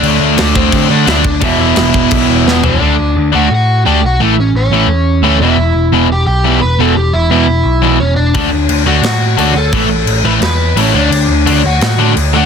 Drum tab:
CC |x-x-x-x-|x-x-x---|--------|--------|
SD |--o---o-|--o---o-|--------|--------|
FT |--------|-------o|--------|--------|
BD |---oo--o|o--oo---|--------|--------|

CC |--------|--------|x-x-x-x-|x-x-x-x-|
SD |--------|--------|----o---|----o---|
FT |--------|--------|--------|--------|
BD |--------|--------|o-------|o-------|

CC |x-x-x-x-|
SD |----o---|
FT |--------|
BD |--------|